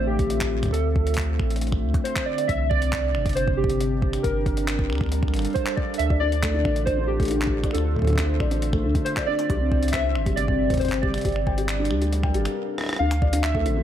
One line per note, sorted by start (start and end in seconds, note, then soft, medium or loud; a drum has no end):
0.00 0.67 A1 medium
0.00 2.49 D3 medium
0.00 2.49 A3 medium
0.00 4.88 C4 medium
0.00 2.49 F4 medium
0.00 4.24 E5 medium
0.07 0.75 G4 medium
0.19 kick loud
0.19 closed hi-hat medium
0.30 closed hi-hat medium
0.41 kick loud
0.41 clap loud
0.63 finger snap medium
0.63 kick loud
0.63 closed hi-hat medium
0.66 kick medium
0.68 kick medium
0.71 1.41 D2 loud
0.71 1.57 A4 medium
0.71 kick medium
0.71 closed hi-hat medium
0.96 kick loud
1.07 closed hi-hat soft
1.14 kick loud
1.14 clap loud
1.14 closed hi-hat soft
1.18 closed hi-hat medium
1.21 closed hi-hat soft
1.40 1.85 A1 medium
1.40 finger snap medium
1.40 kick loud
1.50 closed hi-hat soft
1.56 closed hi-hat soft
1.61 closed hi-hat medium
1.67 closed hi-hat soft
1.72 finger snap medium
1.72 kick loud
1.83 1.96 D2 loud
1.94 kick loud
1.94 closed hi-hat medium
2.04 2.25 C5 loud
2.04 closed hi-hat medium
2.16 kick loud
2.16 clap loud
2.26 2.49 D5 loud
2.38 closed hi-hat medium
2.47 3.16 C2 loud
2.47 4.24 C3 medium
2.47 2.69 E5 loud
2.47 kick loud
2.47 closed hi-hat medium
2.66 10.20 D4 medium
2.66 3.38 D5 loud
2.71 kick loud
2.82 closed hi-hat medium
2.93 kick loud
2.93 clap loud
2.93 closed hi-hat medium
3.15 4.17 G1 medium
3.15 finger snap medium
3.26 4.94 G4 medium
3.26 kick loud
3.26 closed hi-hat soft
3.29 closed hi-hat soft
3.33 3.58 C5 loud
3.33 closed hi-hat soft
3.37 closed hi-hat medium
3.48 kick loud
3.57 4.25 G4 medium
3.64 kick loud
3.70 closed hi-hat medium
3.81 closed hi-hat medium
4.02 kick loud
4.13 finger snap medium
4.13 closed hi-hat medium
4.23 4.91 G1 loud
4.23 5.99 G3 medium
4.23 5.07 A#4 medium
4.23 kick loud
4.23 closed hi-hat medium
4.46 5.99 A#4 medium
4.46 kick loud
4.46 closed hi-hat soft
4.57 closed hi-hat soft
4.68 clap loud
4.68 closed hi-hat medium
4.79 kick loud
4.90 5.35 D2 medium
4.90 finger snap medium
4.93 finger snap soft
4.95 finger snap soft
4.98 7.40 A4 medium
4.98 finger snap soft
5.01 5.99 F5 medium
5.01 finger snap soft
5.01 kick loud
5.04 finger snap soft
5.06 finger snap soft
5.09 finger snap soft
5.09 closed hi-hat medium
5.23 finger snap soft
5.23 kick loud
5.28 finger snap soft
5.34 5.47 G1 loud
5.34 finger snap soft
5.34 closed hi-hat soft
5.36 finger snap soft
5.36 closed hi-hat soft
5.39 closed hi-hat soft
5.42 closed hi-hat soft
5.45 closed hi-hat medium
5.47 closed hi-hat soft
5.50 closed hi-hat soft
5.53 5.77 C5 loud
5.53 kick loud
5.53 closed hi-hat soft
5.56 closed hi-hat medium
5.67 clap loud
5.76 5.97 D5 medium
5.76 kick loud
5.94 6.19 E5 loud
5.94 closed hi-hat soft
5.99 6.67 D2 loud
5.99 9.50 D3 medium
5.99 closed hi-hat medium
6.10 6.20 D5 medium
6.10 kick loud
6.15 9.50 F4 medium
6.20 6.31 D4 medium
6.20 6.82 D5 loud
6.32 closed hi-hat soft
6.43 6.49 A3 medium
6.43 kick loud
6.43 clap loud
6.43 closed hi-hat medium
6.54 6.64 D3 medium
6.64 7.68 A1 medium
6.64 6.75 D4 medium
6.64 10.20 C5 medium
6.64 finger snap medium
6.64 kick loud
6.76 closed hi-hat soft
6.85 7.09 C5 loud
6.85 6.97 D5 medium
6.85 kick loud
6.85 closed hi-hat medium
6.98 7.08 D4 medium
7.07 7.70 G4 medium
7.20 7.26 A3 medium
7.20 kick loud
7.20 closed hi-hat soft
7.23 closed hi-hat soft
7.25 closed hi-hat soft
7.28 7.40 D3 medium
7.28 closed hi-hat soft
7.31 closed hi-hat medium
7.42 7.51 D4 medium
7.42 clap loud
7.47 kick loud
7.57 11.25 E5 medium
7.64 7.73 D5 medium
7.64 finger snap soft
7.64 kick loud
7.64 closed hi-hat soft
7.71 8.42 D2 loud
7.71 7.84 D4 medium
7.71 8.57 A4 medium
7.71 finger snap soft
7.71 closed hi-hat medium
7.78 finger snap soft
7.96 8.02 A3 medium
7.96 kick medium
7.99 kick medium
8.02 kick medium
8.05 8.17 D3 medium
8.05 kick medium
8.05 closed hi-hat soft
8.07 kick medium
8.10 kick medium
8.13 kick medium
8.16 8.28 D4 medium
8.16 kick loud
8.16 clap loud
8.16 closed hi-hat medium
8.18 kick loud
8.40 8.86 A1 medium
8.40 8.50 D5 medium
8.40 finger snap medium
8.40 kick loud
8.51 8.61 D4 medium
8.51 closed hi-hat soft
8.62 closed hi-hat medium
8.73 8.79 A3 medium
8.73 finger snap soft
8.73 kick loud
8.84 8.97 D2 loud
8.84 8.94 D3 medium
8.95 9.05 D4 medium
8.95 kick loud
8.95 closed hi-hat soft
9.05 9.26 C5 medium
9.05 closed hi-hat medium
9.17 9.27 D5 medium
9.17 kick loud
9.17 clap loud
9.26 9.37 D4 medium
9.26 9.95 D5 loud
9.39 closed hi-hat soft
9.50 10.17 C2 loud
9.50 11.25 C3 medium
9.50 9.55 G3 medium
9.50 kick loud
9.50 closed hi-hat medium
9.57 11.95 C4 medium
9.61 9.70 C3 medium
9.72 9.81 C4 medium
9.72 kick loud
9.83 closed hi-hat medium
9.88 10.38 E5 loud
9.88 closed hi-hat medium
9.93 10.03 C5 medium
9.93 kick loud
9.93 clap loud
10.04 10.14 C4 medium
10.09 11.95 D5 medium
10.15 11.18 G1 medium
10.15 finger snap medium
10.20 11.95 G4 medium
10.26 10.32 G3 medium
10.26 kick loud
10.26 closed hi-hat soft
10.36 10.47 C3 medium
10.36 10.77 D5 loud
10.36 closed hi-hat medium
10.48 10.58 C4 medium
10.48 kick loud
10.70 10.80 C5 medium
10.70 kick medium
10.70 closed hi-hat soft
10.74 kick medium
10.74 closed hi-hat soft
10.77 10.91 C4 medium
10.77 11.03 C5 medium
10.77 kick medium
10.77 closed hi-hat soft
10.81 kick medium
10.81 closed hi-hat medium
10.85 kick soft
10.85 closed hi-hat soft
10.88 kick soft
10.88 clap loud
10.88 closed hi-hat soft
11.02 11.09 G3 medium
11.02 12.52 D5 medium
11.02 kick loud
11.14 11.24 C3 medium
11.14 finger snap medium
11.14 closed hi-hat soft
11.18 closed hi-hat soft
11.21 11.92 G1 loud
11.21 12.56 G3 medium
11.21 11.34 G4 medium
11.21 kick loud
11.21 closed hi-hat soft
11.25 closed hi-hat medium
11.29 closed hi-hat soft
11.32 finger snap soft
11.32 closed hi-hat soft
11.40 12.56 D4 medium
11.47 11.56 G5 medium
11.47 kick loud
11.58 11.67 G4 medium
11.58 closed hi-hat medium
11.69 clap loud
11.69 closed hi-hat medium
11.80 11.85 D4 medium
11.85 closed hi-hat soft
11.91 12.36 D2 medium
11.91 12.00 G3 medium
11.91 finger snap medium
12.01 12.11 G4 medium
12.01 closed hi-hat soft
12.13 closed hi-hat medium
12.23 12.33 G5 medium
12.23 finger snap medium
12.23 kick loud
12.34 12.48 G1 loud
12.34 12.44 G4 medium
12.34 closed hi-hat soft
12.45 finger snap medium
12.45 closed hi-hat medium
12.78 cross-stick medium
12.81 cross-stick soft
12.84 cross-stick soft
12.86 cross-stick soft
12.89 cross-stick medium
12.93 cross-stick medium
12.96 13.67 D2 loud
12.96 13.83 D3 medium
12.96 13.10 D4 medium
12.96 13.45 F5 medium
12.96 cross-stick soft
13.11 finger snap medium
13.11 closed hi-hat medium
13.16 13.83 C5 medium
13.22 13.32 D5 medium
13.22 kick loud
13.33 13.43 D4 medium
13.33 closed hi-hat loud
13.42 13.83 E5 medium
13.42 finger snap medium
13.42 clap loud
13.55 13.61 A3 medium
13.55 kick loud
13.66 13.83 A1 medium
13.66 13.75 D3 medium
13.66 closed hi-hat medium
13.77 13.83 D4 medium